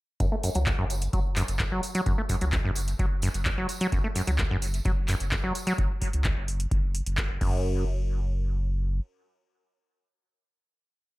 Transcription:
0.20 F#1 F#2, kick, closed hi-hat, tambourine
0.32 A3
0.43 F#2, open hi-hat, tambourine
0.55 C#2 F#3, closed hi-hat, tambourine
0.66 F#2, kick, clap, closed hi-hat, tambourine
0.79 F#1 F#2
0.90 open hi-hat, tambourine
1.01 closed hi-hat, tambourine
1.13 F#1 F#3, kick, closed hi-hat, tambourine
1.36 F#2, clap, open hi-hat, tambourine
1.48 F#1, closed hi-hat, tambourine
1.59 F#2, kick, clap, closed hi-hat
1.72 F#1 F#3
1.83 open hi-hat, tambourine
1.95 F#3, closed hi-hat, tambourine
2.06 F#1 F#2, kick, closed hi-hat, tambourine
2.18 A3
2.29 F#2, kick, open hi-hat, tambourine
2.41 C#2 F#3, closed hi-hat, tambourine
2.52 F#2, kick, clap, closed hi-hat, tambourine
2.65 F#1 F#2
2.75 open hi-hat, tambourine
2.88 closed hi-hat, tambourine
2.99 F#1 F#3, kick, closed hi-hat, tambourine
3.22 F#2, open hi-hat, tambourine
3.34 F#1, closed hi-hat, tambourine
3.45 F#2, kick, clap, closed hi-hat, tambourine
3.58 F#1 F#3
3.69 open hi-hat, tambourine
3.80 F#3, closed hi-hat, tambourine
3.92 F#1 F#2, kick, closed hi-hat, tambourine
4.04 A3
4.15 F#2, open hi-hat, tambourine
4.27 C#2 F#3, closed hi-hat, tambourine
4.38 F#2, kick, clap, closed hi-hat, tambourine
4.51 F#1 F#2
4.62 open hi-hat, tambourine
4.74 closed hi-hat, tambourine
4.85 F#1 F#3, kick, closed hi-hat, tambourine
5.08 F#2, clap, open hi-hat, tambourine
5.20 F#1, closed hi-hat, tambourine
5.32 F#2, kick, clap, closed hi-hat, tambourine
5.44 F#1 F#3
5.55 open hi-hat, tambourine
5.67 F#3, closed hi-hat, tambourine
5.78 F#1, kick, closed hi-hat
6.02 kick, open hi-hat
6.13 C#2, closed hi-hat
6.24 kick, clap, closed hi-hat
6.37 F#1
6.48 open hi-hat
6.60 closed hi-hat
6.71 F#1, kick, closed hi-hat
6.95 open hi-hat
7.06 F#1, closed hi-hat
7.18 kick, clap, closed hi-hat
7.30 F#1
7.41 F#1 F#2, kick, crash

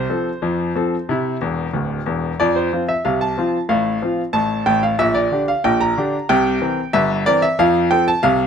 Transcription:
Already playing: C5
0.09 F3 C4 A4
0.42 F2 F3
0.75 F3 C4 A4
1.09 C3 E4
1.41 E1 E2
1.73 D1 D2
2.06 E1 E2
2.40 F2 F3 D5
2.56 C5
2.72 F3 C4 F4
2.89 E5
3.05 C2 C3 F5
3.21 A5
3.37 F3 C4 F4
3.69 A1 A2 F5
4.02 F3 C4 F4
4.33 A1 A2 A5
4.66 A1 A2 G5
4.83 F5
4.99 A#1 A#2 E5
5.14 D5
5.32 D3 D4 G4
5.48 F5
5.64 A#1 A#2 G5
5.81 A#5
5.97 D3 D4 G4
6.29 C2 C3 G5
6.61 E3 C4 A#4
6.93 G1 G2 E5
7.26 E3 C4 A#4 D5
7.42 E5
7.59 F2 F3 F5
7.91 F3 C4 A4 G5
8.08 A5
8.23 C2 C3 F5

